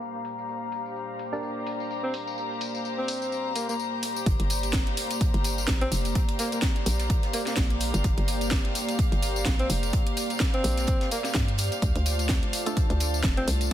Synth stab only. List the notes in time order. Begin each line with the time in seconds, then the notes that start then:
1.33 D4 G4 A#4 D5
12.66 A3 D4 F4 A4